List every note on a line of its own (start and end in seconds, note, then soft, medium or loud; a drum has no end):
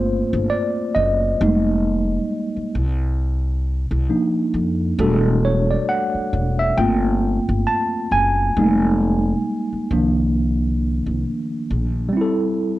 0.00 0.22 G1 medium
0.00 1.36 A3 medium
0.00 1.36 A#3 medium
0.00 1.36 C4 soft
0.00 1.36 F4 medium
0.00 0.47 C5 medium
0.33 0.48 G1 medium
0.50 0.96 D5 medium
0.95 1.33 F#1 medium
0.95 1.81 D#5 medium
1.41 2.16 F1 loud
1.41 2.03 G3 medium
1.41 2.03 G#3 soft
1.41 2.04 A#3 soft
1.41 2.04 D#4 medium
2.56 muted upright bass stroke medium
2.75 3.87 C2 loud
3.91 4.06 C2 medium
4.09 4.72 F3 medium
4.09 4.72 A#3 soft
4.09 4.72 D4 soft
4.09 4.72 D#4 medium
4.54 4.91 F2 medium
4.98 5.74 E1 loud
4.98 6.29 G3 medium
4.98 6.29 A3 medium
4.98 6.30 D4 medium
4.98 6.30 F#4 medium
4.98 5.45 A4 medium
5.45 5.71 C#5 medium
5.71 5.89 D5 medium
5.89 6.62 F#5 medium
6.15 muted upright bass stroke soft
6.33 6.71 E1 medium
6.59 6.78 E5 medium
6.77 7.37 G1 loud
6.77 8.08 A3 medium
6.77 8.08 A#3 medium
6.77 8.09 C4 medium
6.77 8.09 F4 medium
6.77 7.70 G5 medium
7.49 7.64 G1 medium
7.67 8.09 A5 medium
8.11 8.49 F#1 medium
8.11 8.98 G#5 medium
8.57 9.32 F1 loud
8.57 9.87 G3 medium
8.57 9.88 G#3 medium
8.57 9.88 A#3 medium
8.57 9.88 D#4 medium
9.73 muted upright bass stroke medium
9.91 11.03 C2 medium
9.91 11.22 D#3 medium
9.91 11.22 F3 medium
9.91 11.22 A#3 medium
9.91 11.22 D4 medium
11.06 11.22 C2 medium
11.70 12.08 A#1 medium
12.09 12.79 G3 medium
12.13 12.79 C4 medium
12.17 12.79 E4 medium
12.21 12.79 A4 medium